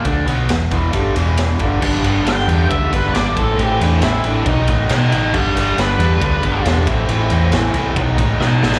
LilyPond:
<<
  \new Staff \with { instrumentName = "Lead electric guitar" } { \time 4/4 \key g \major \tempo 4 = 137 r1 | r4 g''4 e''8 b'8 d''8 a'8 | g'8 d'8 e'8 d'8 dis'8 r8 <fis'' a''>8 <fis'' a''>8 | <d'' g''>8 <d'' g''>8 b'2 r4 |
r2. <fis'' a''>8 <fis'' a''>8 | }
  \new Staff \with { instrumentName = "Overdriven electric guitar" } { \clef bass \time 4/4 \key g \major <d a d'>8 <b, fis b>8 <e, b,>8 <e, b, e>8 <g, d g>8 <e, b, e>4 <g, d g>8 | <g, d g b d'>8 <g b d'>8 <d g b d'>8 <g, d g b d'>8 <d g b d'>8 <g, d g b d'>8 <d g b d'>8 <a, e a c' e'>8 | <a, e a c' e'>8 <a c' e'>8 <e a c' e'>8 <a, e a c' e'>8 <b, dis fis b dis'>8 <b, dis fis b dis'>8 <dis fis b dis'>8 <fis b dis'>8 | <g, d g b d'>8 <g b d'>8 <d g b d'>8 <g, d g b d'>8 <d g b d'>8 <g, d g b d'>8 <d g b d'>8 <a, e a c' e'>8 |
<a, e a c' e'>8 <a c' e'>8 <e a c' e'>8 <a, e a c' e'>8 <b, dis fis b dis'>8 <b, dis fis b dis'>8 <dis fis b dis'>8 <fis b dis'>8 | }
  \new Staff \with { instrumentName = "Fingered electric bass" } { \clef bass \time 4/4 \key g \major d,8 b,,8 e,,8 e,,8 g,,8 e,,4 g,,8 | g,,8 g,,8 g,,8 e,8 d,8 g,,8 gis,,8 a,,8 | a,,8 e,8 a,,8 a,,8 b,,8 a,8 b,8 a,,8 | g,,8 g,,8 g,,8 e,8 d,8 g,,8 e,,8 a,,8 |
a,,8 e,8 a,,8 c,8 b,,8 a,8 b,8 a,,8 | }
  \new DrumStaff \with { instrumentName = "Drums" } \drummode { \time 4/4 <bd cymr>8 cymr8 <cymr sn>8 <bd cymr>8 <bd cymr>8 cymr8 <cymr sn>8 <bd cymr>8 | <cymc bd>8 cymr8 <cymr sn>8 cymr8 <bd cymr>8 <bd cymr>8 <cymr sn>8 <bd cymr>8 | cymr8 cymr8 <cymr sn>8 cymr8 <bd cymr>8 <bd cymr>8 <cymr sn>8 cymr8 | <cymc bd>8 cymr8 <cymr sn>8 cymr8 <bd cymr>8 <bd cymr>8 <cymr sn>8 <bd cymr>8 |
cymr8 cymr8 <cymr sn>8 cymr8 <bd cymr>8 <bd cymr>8 sn8 sn16 sn16 | }
>>